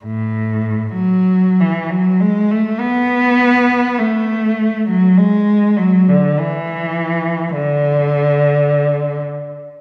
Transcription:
0.05 A2
0.93 F#3
1.60 E3
1.90 F#3
2.20 G#3
2.52 A3
2.80 B3
3.99 A3
4.88 F#3
5.18 G#3
5.77 F#3
6.08 D3
6.39 E3
7.54 D3

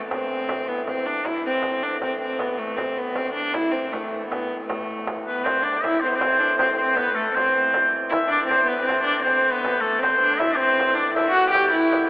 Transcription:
Already playing: A2 E3
0.10 C4, frame drum
0.49 frame drum
0.68 B3
0.87 C4, frame drum
1.07 D4, frame drum
1.23 A2 E3 E4, frame drum
1.44 C4, frame drum
1.62 frame drum
1.83 D4
2.02 C4, frame drum
2.22 C4
2.39 B3, frame drum
2.58 A3, frame drum
2.77 C4, frame drum
2.98 B3
3.15 C4, frame drum
3.34 D4
3.54 E4, frame drum
3.72 C4, frame drum
3.93 A3, frame drum
4.29 B3, frame drum
4.69 A3, frame drum
4.89 frame drum
5.07 frame drum
5.26 B3 B4
5.44 C4 C5, frame drum
5.63 D4 D5, frame drum
5.83 A2 E3 E4 E5, frame drum
6.00 C4 C5, frame drum
6.08 B3
6.16 C4 C5
6.21 frame drum
6.40 D4
6.58 C4 C5, frame drum
6.77 C4 C5
6.96 B3 B4, frame drum
7.15 A3 A4, frame drum
7.33 C4 C5, frame drum
7.74 frame drum
8.10 E4 E5, frame drum
8.29 D4 D5, frame drum
8.47 C4 C5
8.51 frame drum
8.65 B3 B4
8.83 C4
8.87 C5, frame drum
9.04 D4 D5
9.23 C4 C5
9.27 frame drum
9.46 frame drum
9.52 B3 B4
9.65 frame drum
9.81 A3 A4
9.99 C4 C5, frame drum
10.21 D4
10.38 A2 E3 E4 E5, frame drum
10.52 D4
10.56 C4 C5
10.61 frame drum
10.80 frame drum
10.95 D4 D5
11.14 E4 E5, frame drum
11.31 F#4 F#5
11.51 G4 G5, frame drum
11.71 E4, frame drum
11.93 frame drum

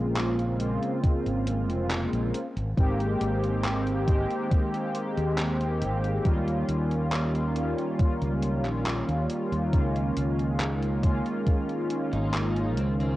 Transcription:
Already playing: A#1 C#3 G#3 A#3 C4 F4
0.16 clap, closed hi-hat
0.39 closed hi-hat
0.59 C#3 G#3 A#3 C4 F4, closed hi-hat
0.83 closed hi-hat
1.04 kick, closed hi-hat
1.26 G#1, closed hi-hat
1.47 closed hi-hat
1.69 F1, closed hi-hat
1.91 clap, closed hi-hat
2.13 A#1, closed hi-hat
2.34 closed hi-hat
2.56 G#1, closed hi-hat
2.76 G#1 D#3 G#3 A#3 C4 G4, kick, closed hi-hat
3.00 closed hi-hat
3.21 G#1, closed hi-hat
3.44 closed hi-hat
3.64 clap, closed hi-hat
3.87 closed hi-hat
4.06 D#3 G#3 A#3 C4 G4, kick, closed hi-hat
4.31 closed hi-hat
4.51 kick, closed hi-hat
4.74 closed hi-hat
4.95 closed hi-hat
5.17 D#2, closed hi-hat
5.38 clap, closed hi-hat
5.61 closed hi-hat
5.82 G#1, closed hi-hat
6.04 closed hi-hat
6.24 D#2 D#3 G3 A#3 C#4 F4, kick, closed hi-hat
6.48 closed hi-hat
6.69 D#2, closed hi-hat
6.91 closed hi-hat
7.12 clap, closed hi-hat
7.35 closed hi-hat
7.54 D#3 G3 A#3 C#4 F4, closed hi-hat
7.78 closed hi-hat
7.99 kick, closed hi-hat
8.22 C#2, closed hi-hat
8.42 closed hi-hat
8.65 A#1, clap, closed hi-hat
8.86 clap, closed hi-hat
9.08 D#2, closed hi-hat
9.30 closed hi-hat
9.52 D#2, closed hi-hat
9.72 C#2 D#3 G#3 A#3 C#4 F4, kick, closed hi-hat
9.96 closed hi-hat
10.17 C#2, closed hi-hat
10.39 closed hi-hat
10.60 clap, closed hi-hat
10.83 closed hi-hat
11.02 D#3 G#3 A#3 C#4 F4, kick, closed hi-hat
11.26 closed hi-hat
11.47 kick, closed hi-hat
11.70 closed hi-hat
11.90 closed hi-hat
12.13 G#1 D#4, closed hi-hat
12.34 clap, closed hi-hat
12.56 closed hi-hat
12.77 C#2 C4, closed hi-hat
13.00 C4, closed hi-hat

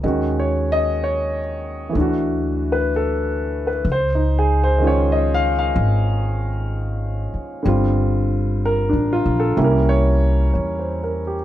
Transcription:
0.03 D#2 D#3 G#3 C#4 F#4
0.40 C#5
0.72 D#5
1.04 C#5
1.89 E3 A3
1.95 D2 D4
2.01 F#4
2.72 B4
2.96 A4
3.67 B4
3.85 C#2
3.92 C5
4.15 D#4
4.39 G#4
4.64 C5
4.78 D#3 G#3 C#4
4.84 F4 C#5
5.12 D#5
5.34 F5
5.59 F5
5.76 G#1
7.34 muted upright bass stroke
7.63 G1 D3 G3 C4
7.68 F4
8.65 A#4
8.89 A1 D4
9.13 F4
9.26 A#1
9.40 A4
9.57 C2 G3 A#3 C#4 E4
9.64 A#4
9.89 C#5
10.54 E2 C#5
10.79 C5
11.04 A#4
11.27 G4

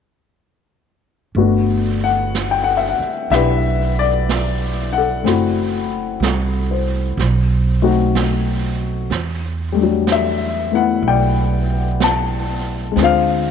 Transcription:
1.35 G1 A3 B3 D4 F#4, brush sweep
2.04 F#5
2.35 brush sweep, snare, hi-hat pedal
2.51 G5
2.64 F#5
2.77 E5
2.89 F#5
2.99 muted upright bass stroke
3.30 B1 D4 E4 G4 B4 E5, brush sweep, snare
3.99 D5
4.29 brush sweep, snare, hi-hat pedal
4.93 F#5
4.98 A4
5.23 F#1 A3 C4 E4, brush sweep, snare
5.28 F#4
6.20 C2 A4, brush sweep, snare, hi-hat pedal
6.71 C5
7.17 B1, brush sweep, snare
7.82 A3 C4 D#4 F#4
8.15 brush sweep, snare, hi-hat pedal
9.10 E2, brush sweep, snare
9.72 G3 A3
9.79 F#3 D4
10.07 brush sweep, snare, hi-hat pedal
10.12 E5
10.71 A3 B3 E4 F#5
11.02 B1, brush sweep
11.08 D5 G5
12.00 A5, brush sweep, snare, hi-hat pedal
12.92 G#3
12.96 D2 C4, brush sweep, snare
13.00 D4 F4 C5
13.04 F5

